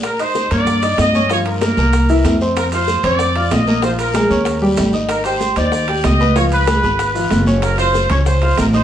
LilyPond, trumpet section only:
\new Staff \with { instrumentName = "Trumpet section" } { \time 4/4 \key ees \major \tempo 4 = 190 bes'8 c''4 d''4. ees''4 | des''8 bes'2. r8 | bes'8 c''4 d''4. ees''4 | c''8 bes'2 r4. |
bes'8 c''4 d''4. ees''4 | des''8 ces''2. r8 | bes'8 c''4 des''8 c''4 bes'8 c''8 | }